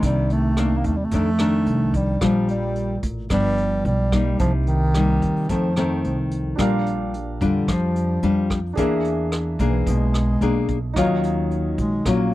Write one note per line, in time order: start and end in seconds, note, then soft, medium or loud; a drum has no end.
0.00 0.81 C2 medium
0.00 0.53 D#3 medium
0.00 0.53 A#3 medium
0.00 0.54 D4 medium
0.00 kick medium
0.00 closed hi-hat medium
0.04 1.10 C3 medium
0.04 0.34 G3 medium
0.30 0.79 A3 loud
0.30 closed hi-hat soft
0.57 0.94 D#3 soft
0.57 0.95 A#3 medium
0.57 0.95 D4 medium
0.57 cross-stick medium
0.57 closed hi-hat soft
0.77 0.87 A#3 medium
0.84 1.10 D#2 medium
0.84 0.98 A3 medium
0.84 kick soft
0.84 closed hi-hat soft
0.96 1.06 G3 medium
1.04 1.13 A3 medium
1.11 1.63 F2 medium
1.11 2.19 F2 soft
1.11 1.28 D#3 soft
1.11 1.29 A3 medium
1.11 1.97 A3 medium
1.11 1.29 D4 medium
1.11 kick medium
1.11 closed hi-hat medium
1.39 2.17 D#3 medium
1.39 2.17 A3 medium
1.39 2.17 D4 medium
1.39 cross-stick medium
1.39 closed hi-hat soft
1.66 2.17 C2 medium
1.66 closed hi-hat soft
1.94 2.22 G3 medium
1.94 kick soft
1.94 closed hi-hat soft
2.21 2.99 A#1 medium
2.21 3.28 A#2 medium
2.21 2.47 F3 medium
2.21 2.95 G3 medium
2.21 2.95 D4 medium
2.21 2.95 F4 medium
2.21 kick medium
2.21 cross-stick medium
2.21 closed hi-hat medium
2.48 3.00 G3 medium
2.48 closed hi-hat soft
2.75 closed hi-hat soft
3.03 3.29 A1 medium
3.03 kick soft
3.03 closed hi-hat soft
3.30 3.81 G1 medium
3.30 4.37 G2 soft
3.30 4.08 F3 soft
3.30 3.82 G3 loud
3.30 4.08 B3 soft
3.30 4.08 D4 soft
3.30 kick medium
3.30 cross-stick medium
3.30 closed hi-hat medium
3.58 closed hi-hat soft
3.85 4.36 B1 medium
3.85 4.36 G3 medium
3.85 closed hi-hat soft
4.12 4.90 G3 medium
4.12 4.91 A#3 medium
4.12 4.91 D#4 medium
4.12 kick medium
4.12 cross-stick medium
4.12 closed hi-hat soft
4.39 5.18 C2 medium
4.39 5.47 C3 medium
4.39 4.52 F3 medium
4.39 kick medium
4.39 closed hi-hat medium
4.67 5.51 D#3 loud
4.67 closed hi-hat soft
4.94 5.47 G3 medium
4.94 5.48 A#3 medium
4.94 5.48 D#4 medium
4.94 cross-stick medium
4.94 closed hi-hat soft
5.22 5.47 D#2 medium
5.22 kick soft
5.22 closed hi-hat soft
5.49 6.00 F2 medium
5.49 6.56 F2 soft
5.49 5.72 D#3 soft
5.49 6.31 F3 medium
5.49 5.73 A3 medium
5.49 5.73 C4 soft
5.49 kick medium
5.49 closed hi-hat medium
5.76 6.54 D#3 medium
5.76 6.55 A3 medium
5.76 6.55 C4 medium
5.76 cross-stick soft
5.76 closed hi-hat soft
6.04 6.55 C2 medium
6.04 closed hi-hat soft
6.31 closed hi-hat soft
6.56 7.37 A#1 medium
6.56 7.65 A#2 medium
6.56 7.13 G3 medium
6.56 8.72 D4 medium
6.56 7.13 D4 soft
6.56 7.13 F4 medium
6.56 8.73 G4 medium
6.56 kick medium
6.56 cross-stick medium
6.56 closed hi-hat medium
6.60 8.74 A#4 soft
6.60 8.75 F5 medium
6.86 closed hi-hat soft
7.14 closed hi-hat soft
7.41 7.66 F2 medium
7.41 7.74 D3 medium
7.41 8.19 G3 medium
7.41 8.19 D4 medium
7.41 8.19 F4 medium
7.41 kick soft
7.41 closed hi-hat soft
7.68 8.19 F2 medium
7.68 8.75 F3 medium
7.68 kick medium
7.68 cross-stick medium
7.68 closed hi-hat medium
7.72 8.52 F3 medium
7.96 closed hi-hat soft
8.23 8.74 F2 medium
8.23 8.58 G3 medium
8.23 8.58 D4 medium
8.23 8.59 F4 medium
8.23 closed hi-hat soft
8.50 kick medium
8.50 cross-stick soft
8.50 closed hi-hat soft
8.73 10.90 D4 medium
8.73 10.91 G#4 medium
8.73 kick medium
8.73 closed hi-hat medium
8.77 9.56 E2 medium
8.77 9.84 E3 medium
8.77 9.55 A#3 medium
8.77 9.55 D4 medium
8.77 9.56 G#4 medium
8.77 10.92 A#4 medium
8.77 10.93 E5 medium
9.04 closed hi-hat soft
9.32 cross-stick medium
9.32 closed hi-hat soft
9.59 9.85 B1 medium
9.59 9.92 E3 medium
9.59 10.37 A#3 medium
9.59 10.38 D4 soft
9.59 10.38 G#4 medium
9.59 kick soft
9.59 closed hi-hat soft
9.87 10.38 B1 medium
9.87 10.94 B2 soft
9.87 kick medium
9.87 closed hi-hat medium
9.91 10.71 G#3 medium
10.14 cross-stick medium
10.14 closed hi-hat soft
10.41 10.92 B1 medium
10.41 10.77 A#3 medium
10.41 10.77 D4 medium
10.41 10.77 G#4 medium
10.41 closed hi-hat soft
10.68 kick medium
10.68 closed hi-hat soft
10.93 11.74 D#2 medium
10.93 12.03 D#3 medium
10.93 12.02 F#3 medium
10.93 12.02 C#4 medium
10.93 12.34 D#4 medium
10.93 kick medium
10.93 cross-stick medium
10.93 closed hi-hat medium
10.97 12.02 F4 medium
10.97 12.34 C#5 medium
10.97 12.34 F5 medium
11.23 closed hi-hat soft
11.51 closed hi-hat soft
11.78 12.04 A#1 medium
11.78 12.12 G#3 medium
11.78 kick soft
11.78 closed hi-hat soft
12.05 12.34 A#1 medium
12.05 12.34 A#2 soft
12.05 12.34 F#3 medium
12.05 12.34 C#4 soft
12.05 12.34 F4 medium
12.05 kick medium
12.05 cross-stick soft
12.05 closed hi-hat medium
12.10 12.34 A#3 medium